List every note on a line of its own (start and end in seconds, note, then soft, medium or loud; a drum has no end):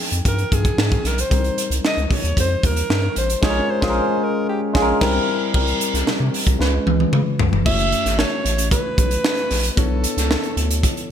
0.00 1.27 F3 medium
0.00 1.27 C4 medium
0.00 1.27 D#4 medium
0.00 1.28 G5 medium
0.12 0.21 F2 medium
0.12 closed hi-hat medium
0.25 0.44 G2 medium
0.25 0.55 A#4 medium
0.25 kick medium
0.25 closed hi-hat loud
0.38 closed hi-hat soft
0.52 0.71 G2 loud
0.52 1.08 G#4 medium
0.52 kick medium
0.52 closed hi-hat medium
0.65 kick medium
0.65 closed hi-hat medium
0.78 0.97 G#2 loud
0.78 snare loud
0.92 kick loud
0.92 closed hi-hat soft
1.04 1.24 B1 medium
1.04 1.21 A#4 medium
1.04 snare soft
1.04 closed hi-hat medium
1.18 1.72 C5 loud
1.18 closed hi-hat medium
1.30 1.50 C2 loud
1.30 3.38 G3 medium
1.30 3.38 C4 medium
1.30 1.38 D4 soft
1.30 3.39 A#4 medium
1.30 kick loud
1.30 closed hi-hat medium
1.38 3.42 D#4 medium
1.44 closed hi-hat soft
1.58 closed hi-hat medium
1.70 1.80 C2 loud
1.70 closed hi-hat soft
1.85 2.05 D#5 loud
1.85 snare loud
1.97 2.07 C#2 medium
1.97 closed hi-hat soft
2.05 2.14 D#5 medium
2.11 2.38 C#5 medium
2.11 kick medium
2.11 open hi-hat medium
2.24 2.33 D#2 loud
2.24 closed hi-hat medium
2.37 2.56 F2 medium
2.37 2.67 C5 loud
2.37 kick medium
2.37 closed hi-hat loud
2.63 2.83 D#2 medium
2.63 3.18 A#4 loud
2.63 kick medium
2.63 closed hi-hat medium
2.76 closed hi-hat medium
2.90 3.09 G2 medium
2.90 snare loud
3.16 3.36 A1 loud
3.16 3.46 C5 loud
3.16 closed hi-hat medium
3.30 closed hi-hat soft
3.41 3.61 A#1 loud
3.41 3.60 G#3 loud
3.41 3.61 C#4 loud
3.41 3.61 F4 loud
3.41 3.61 G#4 loud
3.41 3.72 C#5 loud
3.41 kick loud
3.41 snare loud
3.41 crash medium
3.50 3.65 A#4 loud
3.70 4.25 C5 medium
3.81 4.00 A#1 loud
3.81 4.00 G#3 loud
3.81 4.00 C#4 loud
3.81 4.01 F4 loud
3.81 4.01 G#4 loud
3.81 kick loud
3.81 snare loud
3.90 4.05 A#4 loud
4.23 4.48 A#4 medium
4.49 4.61 G4 medium
4.73 4.93 A#1 loud
4.73 4.92 G#3 loud
4.73 4.93 C#4 loud
4.73 4.93 F4 loud
4.73 4.94 G#4 loud
4.73 kick loud
4.73 snare loud
4.82 4.97 A#4 loud
5.01 5.20 C2 loud
5.01 5.19 G3 loud
5.01 5.19 C4 loud
5.01 5.20 E4 loud
5.01 5.51 A#4 loud
5.01 5.20 A#4 loud
5.01 kick loud
5.01 snare loud
5.01 crash medium
5.53 5.74 C2 medium
5.53 6.57 G3 medium
5.53 6.58 C4 medium
5.53 5.61 C#4 soft
5.53 6.59 A#4 medium
5.53 kick loud
5.53 crash medium
5.61 6.62 E4 medium
5.67 closed hi-hat soft
5.81 closed hi-hat medium
5.94 6.04 C2 medium
5.94 snare soft
5.94 closed hi-hat soft
6.07 6.12 C3 soft
6.07 snare loud
6.20 6.30 C3 loud
6.34 open hi-hat medium
6.47 6.56 C2 medium
6.47 kick medium
6.47 closed hi-hat medium
6.59 6.79 C#2 loud
6.59 7.63 G#3 medium
6.59 7.63 C#4 medium
6.59 7.64 F4 medium
6.59 7.64 B4 medium
6.59 snare medium
6.87 7.06 C#2 loud
6.87 high tom medium
7.00 high tom medium
7.13 7.23 C#3 loud
7.13 mid tom loud
7.39 7.49 C#2 medium
7.39 floor tom loud
7.53 7.62 F1 medium
7.53 floor tom medium
7.65 7.95 F#1 loud
7.65 9.73 A3 medium
7.65 9.74 C#4 medium
7.65 9.74 E4 medium
7.65 9.74 F#4 medium
7.65 9.74 C#5 medium
7.65 8.20 E5 loud
7.65 kick loud
7.65 crash loud
7.79 closed hi-hat soft
7.92 closed hi-hat medium
8.06 8.25 G#1 loud
8.06 snare soft
8.06 closed hi-hat medium
8.18 8.71 C#5 loud
8.18 snare loud
8.45 8.74 A1 loud
8.45 closed hi-hat medium
8.58 closed hi-hat medium
8.71 9.70 B4 loud
8.71 kick medium
8.71 closed hi-hat medium
8.98 9.17 B1 medium
8.98 kick medium
8.98 closed hi-hat medium
9.11 closed hi-hat medium
9.25 snare loud
9.37 closed hi-hat soft
9.51 9.70 A#1 medium
9.51 snare soft
9.51 open hi-hat medium
9.64 closed hi-hat medium
9.70 9.79 B4 medium
9.76 10.06 B1 loud
9.76 11.11 B3 medium
9.76 11.11 D4 medium
9.76 11.11 E4 medium
9.76 10.84 A4 medium
9.76 11.11 A4 medium
9.76 11.11 C#5 medium
9.76 kick loud
9.76 closed hi-hat medium
10.04 closed hi-hat medium
10.17 10.36 C#2 medium
10.17 snare soft
10.17 closed hi-hat medium
10.31 snare loud
10.44 closed hi-hat soft
10.57 10.86 D2 medium
10.57 closed hi-hat medium
10.71 closed hi-hat medium
10.83 kick medium
10.83 closed hi-hat loud
10.97 closed hi-hat soft